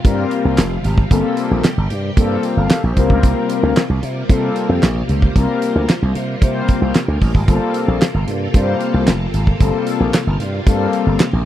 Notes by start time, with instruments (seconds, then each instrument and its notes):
Already playing: string machine C3 G3 A#3 F4
0.04 slap bass G2, analog polysynth G3 A#3 C4 F4 A#4, kick, closed hi-hat
0.31 closed hi-hat
0.45 slap bass C2
0.58 slap bass F1, snare, clap, closed hi-hat
0.84 slap bass G#1, closed hi-hat
0.98 kick
1.11 slap bass G1, analog polysynth G3 A#3 C4 F4 A4, string machine G4, kick, closed hi-hat
1.37 closed hi-hat
1.51 slap bass A#1
1.64 snare, clap, closed hi-hat
1.77 slap bass G1
1.90 slap bass G2, closed hi-hat
2.17 slap bass G2, analog polysynth G3 A#3 C4 F4 A4, kick, closed hi-hat
2.43 analog polysynth A#4 G5, closed hi-hat
2.57 slap bass G1, analog polysynth A4 F5
2.70 snare, clap, closed hi-hat
2.84 slap bass A#1
2.97 slap bass C2, string machine C3 G3 F4, analog polysynth G3 A#3 C4 F4 A#4, kick, closed hi-hat
3.10 slap bass C#2, kick
3.23 slap bass C2, kick, closed hi-hat
3.50 closed hi-hat
3.63 slap bass D2
3.77 snare, clap, closed hi-hat
3.89 slap bass C2
4.03 slap bass C3, closed hi-hat
4.29 slap bass C3, analog polysynth G3 A#3 C4 F4 A4, kick, closed hi-hat
4.56 closed hi-hat
4.69 slap bass F2
4.83 slap bass A#1, snare, clap, closed hi-hat
5.09 slap bass C#2, closed hi-hat
5.22 kick
5.35 slap bass C2, analog polysynth G3 A#3 C4 F4 A#4, kick, closed hi-hat
5.62 closed hi-hat
5.75 slap bass D2
5.89 snare, clap, closed hi-hat
6.02 slap bass C2
6.15 slap bass C3, closed hi-hat
6.41 slap bass C3, analog polysynth G3 A#3 C4 F4 C5, kick, closed hi-hat
6.68 kick, closed hi-hat
6.82 slap bass C2
6.95 snare, clap, closed hi-hat
7.08 slap bass D2
7.22 slap bass A1, kick, open hi-hat
7.35 slap bass G#1, kick
7.47 slap bass G1, string machine C3 A4, analog polysynth G3 A#3 C4 F4 A4, kick, closed hi-hat
7.74 closed hi-hat
7.88 slap bass A#1
8.02 snare, clap, closed hi-hat
8.14 slap bass G1
8.27 slap bass G2, closed hi-hat
8.54 slap bass G2, analog polysynth G3 A#3 C4 F4 C5, kick, closed hi-hat
8.81 closed hi-hat
8.94 slap bass C2
9.07 slap bass F1, snare, clap, closed hi-hat
9.34 slap bass G#1, closed hi-hat
9.47 kick
9.60 slap bass G1, analog polysynth G3 A3 C4 F4 A4, kick, closed hi-hat
9.67 analog polysynth A#3
9.87 closed hi-hat
10.00 slap bass A#1
10.14 snare, clap, closed hi-hat
10.27 slap bass G1
10.40 slap bass G2, closed hi-hat
10.67 slap bass G2, analog polysynth G3 A3 C4 F4 A4, kick, closed hi-hat
10.73 analog polysynth A#3
10.93 closed hi-hat
11.06 slap bass G1
11.20 snare, clap, closed hi-hat
11.33 slap bass A#1